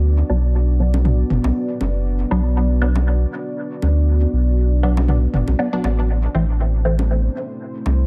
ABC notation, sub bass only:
X:1
M:4/4
L:1/16
Q:"Swing 16ths" 1/4=119
K:Bphr
V:1 name="Sub bass" clef=bass
D,, z B,,,6- B,,, z F,,, B,,, z2 F,,,2- | F,,, z B,,,6- B,,, z4 z D,,2- | D,, z B,,,6- B,,, z F,,, B,,, z2 A,,,2- | A,,, z A,,,6- A,,, z4 z C,,2 |]